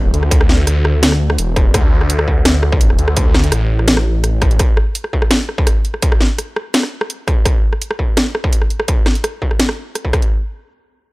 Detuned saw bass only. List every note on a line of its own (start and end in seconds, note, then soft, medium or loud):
0.00 0.12 D2 medium
0.13 0.65 D2 loud
0.67 1.37 D2 loud
1.38 1.73 E1 medium
1.74 2.44 D2 medium
2.45 2.97 D2 medium
2.99 3.51 D2 loud
3.52 4.58 A1 loud